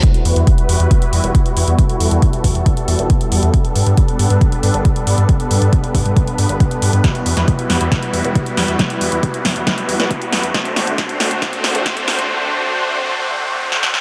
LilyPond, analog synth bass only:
\new Staff \with { instrumentName = "Analog synth bass" } { \clef bass \time 4/4 \key e \minor \tempo 4 = 137 r8 e,16 e,16 r8 e,16 e,16 r8 e,16 e,,16 r8 e,16 e,16 | r8 e,16 e,16 r8 e,16 e,16 r8 e,16 e,,16 r8 e,16 e,16 | r8 g,16 g,16 r8 g,16 g,16 r8 g,16 g,,16 r8 g,16 g,16 | r8 g,16 g,16 r8 g,16 g,16 r8 g,16 g,,16 r8 g,16 g,16 |
r8 e,16 e,16 r8 e,16 e,16 r8 e,16 e,,16 r8 e,16 e,16 | r8 e,16 e,16 r8 e,16 e,16 r8 e,16 e,,16 r8 e,16 e,16 | r8 d,16 d,16 r8 d,16 d,16 r8 d,16 d,,16 r8 d,16 d,16 | r1 | }